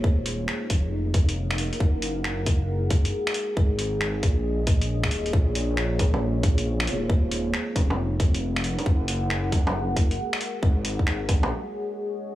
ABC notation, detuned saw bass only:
X:1
M:4/4
L:1/8
Q:"Swing 16ths" 1/4=136
K:Ebdor
V:1 name="Detuned saw bass" clef=bass
E,,,2 z F,,,4 z | G,,,6 z2 | A,,,3 B,,,4 E,,, | B,,,6 B,,, E,,,- |
E,,,2 z F,,,4 z | G,,,6 z2 | A,,,3 B,,, z4 |]